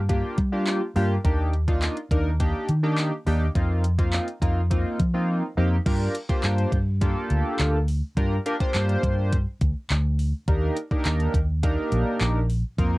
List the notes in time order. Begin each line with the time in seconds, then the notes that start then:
Already playing: G2
0.09 A#3 D4 F4 G4, kick, closed hi-hat
0.38 G3, kick, closed hi-hat
0.52 A#3 D4 F4 G4
0.67 clap, closed hi-hat
0.96 G2 A#3 D4 F4 G4, open hi-hat
1.24 D#2 A#3 D4 D#4 G4, kick, closed hi-hat
1.53 closed hi-hat
1.68 A#3 D4 D#4 F4, kick, closed hi-hat
1.82 clap, closed hi-hat
1.97 closed hi-hat
2.11 D#2 A#3 D4 D#4 A#4, kick, closed hi-hat
2.40 A#3 D4 D#4 G4, kick, closed hi-hat
2.69 D#3, closed hi-hat
2.83 A#3 D4 D#4 G4
2.98 clap, closed hi-hat
3.26 D#2 A#3 D4 D#4 G4, open hi-hat
3.55 F2 A#3 C4 D#4 F4, kick, closed hi-hat
3.84 closed hi-hat
3.99 A#3 C4 D#4 F4, kick, closed hi-hat
4.13 clap, closed hi-hat
4.28 closed hi-hat
4.42 F2 A#3 C4 D#4 F4, kick, closed hi-hat
4.71 A#3 C4 D#4 F4, kick, closed hi-hat
4.99 F3, kick, closed hi-hat
5.14 A#3 C4 D#4 F4
5.57 F2 A#3 C4 D#4 G4
5.86 G2 A#3 D4 F4 G4 A#4, kick, closed hi-hat, crash
6.15 closed hi-hat
6.29 A#3 D4 F4 G4 C5, kick, closed hi-hat
6.44 G2, clap, closed hi-hat
6.58 closed hi-hat
6.72 G2, kick, closed hi-hat
7.01 A#3 D4 F4 G4 A4, kick, closed hi-hat
7.30 D2, closed hi-hat
7.59 D2, clap, closed hi-hat
7.88 open hi-hat
8.17 G2 A#3 D4 F4 G4 A#4, kick, closed hi-hat
8.46 A#3 D4 F4 G4 A#4, closed hi-hat
8.60 A#3 D4 F4 G4 C5, kick, closed hi-hat
8.74 G2, clap, closed hi-hat
8.89 closed hi-hat
9.03 G2, kick, closed hi-hat
9.32 kick, closed hi-hat
9.61 D2, kick, closed hi-hat
9.90 D2, clap, closed hi-hat
10.19 open hi-hat
10.48 D#2 A#3 D4 D#4 G4 A#4, kick, closed hi-hat
10.76 closed hi-hat
10.91 A#3 D4 D#4 G4 A#4, kick, closed hi-hat
11.05 D#2, clap, closed hi-hat
11.20 closed hi-hat
11.34 D#2, kick, closed hi-hat
11.63 A#3 D4 D#4 G4 A#4, kick, closed hi-hat
11.92 A#1, closed hi-hat
12.21 A#1, clap, closed hi-hat
12.50 open hi-hat
12.78 F2 A#3 C4 D#4 F4 A#4, kick, closed hi-hat